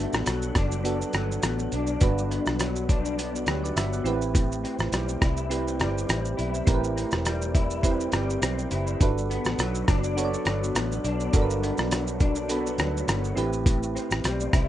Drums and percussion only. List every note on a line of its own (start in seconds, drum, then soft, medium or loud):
0.13 cross-stick medium
0.13 shaker soft
0.26 cross-stick medium
0.26 closed hi-hat medium
0.26 shaker medium
0.42 shaker soft
0.55 kick medium
0.55 cross-stick medium
0.55 closed hi-hat soft
0.55 shaker soft
0.72 shaker soft
0.85 closed hi-hat medium
0.85 shaker medium
1.02 shaker medium
1.13 cross-stick medium
1.13 closed hi-hat soft
1.13 shaker soft
1.32 shaker soft
1.43 cross-stick medium
1.43 closed hi-hat medium
1.43 shaker medium
1.59 shaker soft
1.72 closed hi-hat soft
1.72 shaker soft
1.87 shaker soft
2.01 kick loud
2.01 closed hi-hat medium
2.01 shaker medium
2.18 shaker medium
2.31 closed hi-hat soft
2.31 shaker soft
2.46 cross-stick medium
2.46 shaker soft
2.59 cross-stick medium
2.59 closed hi-hat medium
2.59 shaker medium
2.76 shaker soft
2.89 kick loud
2.89 closed hi-hat soft
2.89 shaker soft
3.05 shaker medium
3.19 closed hi-hat medium
3.19 shaker medium
3.36 shaker medium
3.47 cross-stick medium
3.47 closed hi-hat soft
3.47 shaker soft
3.65 shaker medium
3.77 cross-stick medium
3.77 closed hi-hat medium
3.77 shaker medium
3.93 shaker soft
4.06 closed hi-hat soft
4.06 shaker soft
4.22 shaker soft
4.35 kick loud
4.35 closed hi-hat medium
4.35 shaker medium
4.52 shaker soft
4.65 closed hi-hat soft
4.65 shaker soft
4.79 cross-stick medium
4.79 shaker soft
4.93 cross-stick medium
4.93 closed hi-hat medium
4.93 shaker medium
5.09 shaker soft
5.22 kick loud
5.22 cross-stick medium
5.22 closed hi-hat soft
5.22 shaker soft
5.37 shaker medium
5.51 closed hi-hat medium
5.51 shaker medium
5.68 shaker soft
5.80 cross-stick medium
5.80 closed hi-hat soft
5.80 shaker soft
5.98 shaker soft
6.09 cross-stick medium
6.09 closed hi-hat medium
6.09 shaker medium
6.25 shaker soft
6.39 closed hi-hat soft
6.39 shaker soft
6.54 shaker soft
6.67 kick loud
6.67 closed hi-hat medium
6.67 shaker medium
6.84 shaker medium
6.98 closed hi-hat soft
6.98 shaker soft
7.11 cross-stick medium
7.11 shaker soft
7.25 cross-stick medium
7.25 closed hi-hat medium
7.25 shaker medium
7.42 shaker medium
7.55 kick loud
7.55 closed hi-hat medium
7.55 shaker soft
7.71 shaker medium
7.83 kick medium
7.83 closed hi-hat medium
7.83 shaker medium
8.00 shaker medium
8.12 cross-stick medium
8.12 closed hi-hat soft
8.12 shaker soft
8.30 shaker soft
8.42 cross-stick medium
8.42 closed hi-hat medium
8.42 shaker medium
8.59 shaker soft
8.71 closed hi-hat soft
8.71 shaker soft
8.87 shaker soft
9.01 kick loud
9.01 closed hi-hat medium
9.01 shaker medium
9.18 shaker soft
9.31 closed hi-hat soft
9.31 shaker soft
9.45 cross-stick medium
9.45 shaker soft
9.59 cross-stick medium
9.59 closed hi-hat medium
9.59 shaker medium
9.75 shaker medium
9.88 kick loud
9.88 cross-stick medium
9.88 closed hi-hat soft
9.88 shaker medium
10.04 shaker medium
10.18 closed hi-hat medium
10.18 shaker medium
10.34 shaker soft
10.45 cross-stick medium
10.45 closed hi-hat soft
10.45 shaker soft
10.64 shaker medium
10.75 cross-stick medium
10.75 closed hi-hat medium
10.75 shaker medium
10.92 shaker soft
11.05 closed hi-hat soft
11.05 shaker soft
11.20 shaker soft
11.33 kick loud
11.33 closed hi-hat medium
11.33 shaker medium
11.50 shaker medium
11.63 closed hi-hat soft
11.63 shaker soft
11.78 cross-stick medium
11.78 shaker soft
11.91 cross-stick medium
11.91 closed hi-hat medium
11.91 shaker medium
12.07 shaker medium
12.20 kick loud
12.20 closed hi-hat medium
12.20 shaker soft
12.35 shaker medium
12.49 closed hi-hat medium
12.49 shaker medium
12.67 shaker medium
12.78 cross-stick medium
12.78 closed hi-hat soft
12.78 shaker soft
12.97 shaker soft
13.08 cross-stick medium
13.08 closed hi-hat medium
13.08 shaker medium
13.24 shaker soft
13.37 closed hi-hat soft
13.37 shaker soft
13.53 shaker soft
13.66 kick loud
13.66 closed hi-hat medium
13.66 shaker medium
13.83 shaker medium
13.97 closed hi-hat soft
13.97 shaker soft
14.11 cross-stick medium
14.11 shaker soft
14.24 cross-stick medium
14.24 closed hi-hat medium
14.24 shaker medium
14.40 shaker soft
14.53 kick loud
14.53 cross-stick medium
14.53 closed hi-hat medium
14.53 shaker soft